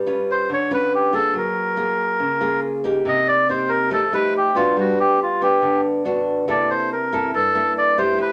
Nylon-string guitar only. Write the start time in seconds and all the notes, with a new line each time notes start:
Already playing: G3
0.06 C#4 F4 B4
0.49 D3
0.71 C#4 F4 B4
1.13 A#3 F4 G#4
1.33 F#3
1.76 A#3 F4 G#4
2.20 C#3
2.40 A#3 F4 G#4
2.84 A#3 D#4 G4
3.05 C3
3.49 A#3 D#4 G4
3.90 F3 A3 D#4 G4
4.12 A3 D#4 G4
4.55 B3 D4 F#4
4.77 G3
5.41 B3 D4
5.62 D3
6.05 B3 D4 F#4
6.48 C3 A#3 E4 A4
7.13 A#3 E4 A4
7.34 G2
7.55 A#3 E4 A4
7.98 A3 E4 G4
8.18 F3